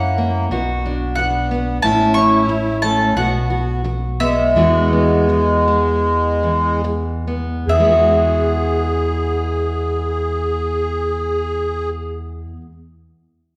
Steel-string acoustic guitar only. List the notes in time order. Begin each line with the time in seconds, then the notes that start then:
Already playing: C#4 E4
0.18 A#3
0.51 B2 F#4
0.86 D4
1.18 muted steel-string acoustic guitar stroke
1.51 B3
1.83 A2 E4
2.17 C#4
2.49 muted steel-string acoustic guitar stroke
2.84 A3
3.17 B2 F#4
3.50 F#4
3.84 muted steel-string acoustic guitar stroke
4.20 B3
4.55 E2 E3 G#3 B3 F#4
4.93 B3
5.29 muted steel-string acoustic guitar stroke
5.68 G#3
6.43 E3
6.84 muted steel-string acoustic guitar stroke
7.27 B3
7.70 E2
7.75 E3
7.80 G#3
7.84 B3
7.90 F#4